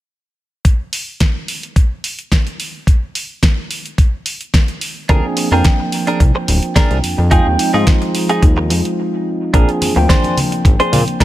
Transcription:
0.65 kick loud
0.65 closed hi-hat medium
0.93 open hi-hat loud
1.20 kick loud
1.20 snare loud
1.20 closed hi-hat medium
1.48 open hi-hat medium
1.63 closed hi-hat soft
1.76 kick loud
1.76 closed hi-hat medium
2.04 open hi-hat medium
2.19 closed hi-hat soft
2.32 kick loud
2.32 snare loud
2.32 closed hi-hat medium
2.47 closed hi-hat soft
2.60 open hi-hat medium
2.87 kick loud
2.87 closed hi-hat medium
3.15 open hi-hat loud
3.43 kick loud
3.43 snare loud
3.43 closed hi-hat medium
3.71 open hi-hat medium
3.86 closed hi-hat soft
3.98 kick loud
3.98 closed hi-hat medium
4.26 open hi-hat loud
4.41 closed hi-hat soft
4.54 kick loud
4.54 snare loud
4.54 closed hi-hat medium
4.68 closed hi-hat soft
4.81 open hi-hat medium
5.09 5.21 D2 medium
5.09 5.48 F3 medium
5.09 5.48 A#3 medium
5.09 5.48 C4 medium
5.09 5.24 D4 loud
5.09 5.48 D4 medium
5.09 5.49 G#4 loud
5.09 5.24 G#4 medium
5.09 5.24 A#4 loud
5.09 kick loud
5.09 closed hi-hat medium
5.37 muted clean electric guitar stroke soft
5.37 open hi-hat loud
5.51 5.62 F2 medium
5.51 7.28 F3 medium
5.51 7.28 A#3 medium
5.51 7.29 C4 medium
5.51 5.65 D4 medium
5.51 7.29 D4 medium
5.51 5.65 G#4 medium
5.51 5.65 A#4 medium
5.51 7.29 G5 medium
5.64 kick loud
5.64 snare loud
5.64 closed hi-hat medium
5.80 muted clean electric guitar stroke soft
5.92 open hi-hat medium
6.07 6.21 D4 medium
6.07 6.21 G#4 medium
6.07 6.21 A#4 medium
6.07 closed hi-hat soft
6.20 6.32 C2 medium
6.20 kick loud
6.20 closed hi-hat medium
6.35 muted clean electric guitar stroke loud
6.48 6.60 D1 medium
6.48 muted clean electric guitar stroke soft
6.48 open hi-hat loud
6.63 closed hi-hat soft
6.76 6.97 D4 medium
6.76 6.97 G#4 medium
6.76 6.97 A#4 medium
6.76 kick loud
6.76 snare loud
6.76 closed hi-hat medium
6.90 7.01 C2 medium
6.90 closed hi-hat soft
7.04 open hi-hat medium
7.18 7.40 F2 medium
7.18 muted clean electric guitar stroke soft
7.31 7.71 F3 medium
7.31 7.71 G#3 medium
7.31 7.71 C4 medium
7.31 7.46 D#4 loud
7.31 7.71 D#4 medium
7.31 7.46 F4 medium
7.31 7.46 G#4 loud
7.31 7.71 G5 loud
7.31 kick loud
7.31 closed hi-hat medium
7.46 7.57 D#2 medium
7.59 muted clean electric guitar stroke soft
7.59 open hi-hat loud
7.73 7.84 G#2 medium
7.73 9.50 F3 medium
7.73 9.51 G#3 medium
7.73 9.51 C4 medium
7.73 7.87 D#4 medium
7.73 9.51 D#4 medium
7.73 7.87 F4 medium
7.73 9.51 F4 medium
7.73 7.87 G#4 medium
7.87 kick loud
7.87 snare loud
7.87 closed hi-hat medium
8.02 muted clean electric guitar stroke soft
8.02 closed hi-hat soft
8.15 open hi-hat medium
8.29 8.43 D#4 medium
8.29 8.43 F4 medium
8.29 8.43 G#4 medium
8.29 closed hi-hat soft
8.42 8.72 D#2 medium
8.42 kick loud
8.42 closed hi-hat medium
8.57 muted clean electric guitar stroke loud
8.70 8.82 F2 loud
8.70 muted clean electric guitar stroke soft
8.70 open hi-hat loud
8.85 closed hi-hat soft
9.54 9.65 A#1 medium
9.54 9.93 F3 medium
9.54 9.93 A#3 medium
9.54 9.93 C4 medium
9.54 9.68 D4 medium
9.54 9.93 D4 medium
9.54 9.68 G#4 medium
9.54 9.93 G#4 medium
9.54 9.69 A#4 medium
9.54 kick loud
9.54 closed hi-hat medium
9.69 closed hi-hat soft
9.81 muted clean electric guitar stroke soft
9.81 open hi-hat loud
9.81 high conga medium
9.95 10.07 D2 medium
9.95 11.24 F3 medium
9.95 11.24 A#3 medium
9.95 11.24 C4 medium
9.95 11.24 D4 medium
9.95 11.24 G5 medium
9.95 muted clean electric guitar stroke medium
10.09 10.37 D4 medium
10.09 10.37 G#4 medium
10.09 10.37 C5 medium
10.09 kick loud
10.09 snare loud
10.09 closed hi-hat medium
10.24 closed hi-hat soft
10.24 high conga medium
10.37 open hi-hat medium
10.37 low conga medium
10.52 closed hi-hat medium
10.65 10.77 G#1 medium
10.65 muted clean electric guitar stroke soft
10.65 kick loud
10.65 closed hi-hat medium
10.80 11.00 D4 loud
10.80 11.00 G#4 medium
10.80 11.00 C5 loud
10.80 closed hi-hat soft
10.92 11.04 A#2 loud
10.92 open hi-hat medium
10.92 low conga medium
11.08 closed hi-hat medium
11.20 11.24 D4 medium
11.20 11.24 G#4 medium
11.20 11.24 A#4 medium
11.20 kick loud
11.20 snare loud
11.20 closed hi-hat medium

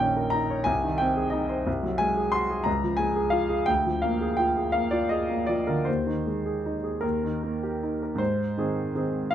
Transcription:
0.00 0.63 A#1 medium
0.00 0.68 D#3 soft
0.00 0.26 C#4 soft
0.00 0.32 G5 medium
0.17 0.43 A#4 soft
0.30 0.60 D#4 medium
0.30 0.65 A#5 medium
0.50 0.67 C#5 medium
0.64 1.64 C2 medium
0.64 0.99 G#5 medium
0.84 1.10 D#3 soft
0.98 1.27 C4 medium
0.98 1.32 G5 medium
1.16 1.43 G#4 soft
1.30 1.60 D#4 soft
1.30 1.65 D#5 medium
1.49 1.67 C5 medium
1.67 2.64 C2 medium
1.83 2.10 F#3 soft
1.98 2.27 G#3 soft
1.98 2.33 G#5 medium
2.17 2.44 G#4 soft
2.32 2.61 F#4 medium
2.32 2.66 C6 medium
2.50 2.67 G#4 medium
2.64 3.65 C#2 medium
2.64 2.99 A#5 medium
2.83 3.10 F3 soft
2.97 3.27 G#3 soft
2.97 3.32 G#5 medium
3.16 3.44 G#4 soft
3.30 3.61 F4 soft
3.30 3.67 F5 medium
3.49 3.68 G#4 medium
3.66 5.83 D2 medium
3.66 4.03 G5 medium
3.86 4.15 F3 soft
4.02 4.32 A#3 soft
4.02 4.38 F5 medium
4.21 4.50 G#4 soft
4.37 4.68 F4 soft
4.37 4.74 G5 medium
4.57 4.86 G#4 soft
4.72 5.04 A#3 soft
4.72 4.92 F5 medium
4.91 5.23 F4 soft
4.91 5.11 D5 medium
5.09 5.41 G#4 soft
5.09 5.48 D#5 medium
5.30 5.60 A#3 soft
5.46 5.80 F3 soft
5.46 5.67 D5 medium
5.67 5.88 D3 soft
5.67 5.87 A#4 medium
5.85 6.99 D#2 medium
5.85 7.80 C5 medium
6.06 6.37 D#3 soft
6.27 6.57 G#3 soft
6.46 6.76 G#4 soft
6.66 6.96 D#4 soft
6.84 7.03 G#4 soft
7.01 8.16 D#2 medium
7.01 8.01 A#4 medium
7.23 7.54 D#3 soft
7.43 7.74 A#3 soft
7.63 7.94 G4 soft
7.83 8.13 D#4 soft
8.03 8.21 A#4 soft
8.15 8.54 G#2 medium
8.15 9.32 C5 medium
8.58 8.91 D#3 soft
8.58 8.92 C4 soft
8.58 8.92 G#4 soft
8.95 9.29 D#3 soft
8.95 9.29 C4 soft
8.95 9.29 G#4 soft
9.31 9.35 F5 medium

